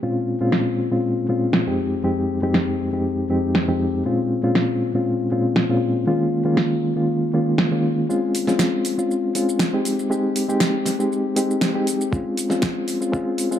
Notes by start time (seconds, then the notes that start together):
0.03 A#2 G#3 C4 C#4 F4
0.40 A#2 G#3 C4 C#4 F4
0.52 snare
0.91 A#2 G#3 C4 C#4 F4
1.29 A#2 G#3 C4 C#4 F4
1.53 snare
1.67 F2 G#3 C4 D#4 G4
2.04 F2 G#3 C4 D#4 G4
2.42 F2 G#3 C4 D#4 G4
2.54 snare
2.93 F2 G#3 C4 D#4 G4
3.30 F2 G#3 C4 D#4 G4
3.55 snare
3.68 F2 G#3 C4 D#4 G4
4.05 A#2 G#3 C4 C#4 F4
4.43 A#2 G#3 C4 C#4 F4
4.55 snare
4.94 A#2 G#3 C4 C#4 F4
5.31 A#2 G#3 C4 C#4 F4
5.56 snare
5.69 A#2 G#3 C4 C#4 F4
6.07 D#3 G#3 A#3 C#4 F4
6.45 D#3 G#3 A#3 C#4 F4
6.57 snare
6.96 D#3 G#3 A#3 C#4 F4
7.33 D#3 G#3 A#3 C#4 F4
7.58 snare
7.71 D#3 G#3 A#3 C#4 F4
8.09 G#3 C4 C#4 F4, shaker
8.35 open hi-hat, shaker
8.47 G#3 C4 C#4 F4, snare, shaker
8.59 snare, shaker
8.85 open hi-hat, shaker
8.98 G#3 C4 C#4 F4, shaker
9.11 shaker
9.35 G#3 C4 C#4 F4, open hi-hat, shaker
9.49 shaker
9.59 snare, shaker
9.73 G#3 C4 D#4 G4
9.85 open hi-hat, shaker
9.99 shaker
10.10 G#3 C4 D#4 G4, shaker
10.36 open hi-hat, shaker
10.48 G#3 C4 D#4 G4, shaker
10.60 snare, shaker
10.86 snare, open hi-hat, shaker
10.99 G#3 C4 D#4 G4, shaker
11.12 shaker
11.36 G#3 C4 D#4 G4, open hi-hat, shaker
11.51 shaker
11.61 snare, shaker
11.74 G#3 C4 D#4 G4
11.87 open hi-hat, shaker
12.01 shaker
12.11 G#3 C4 C#4 F4, kick, shaker
12.37 open hi-hat, shaker
12.50 G#3 C4 C#4 F4, snare, shaker
12.62 kick, snare, shaker
12.88 open hi-hat, shaker
13.01 G#3 C4 C#4 F4, shaker
13.12 G#3 C4 C#4 F4, kick, shaker
13.38 open hi-hat, shaker
13.51 G#3 C4 C#4 F4, shaker